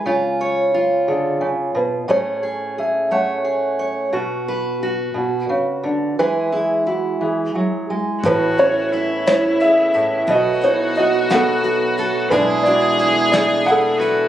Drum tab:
HH |------|------|------|------|
SD |------|------|------|------|
BD |------|------|------|------|

HH |xxxxxx|xxxxxx|xxxxxx|
SD |---o--|---o--|---o--|
BD |o-----|o-----|o-----|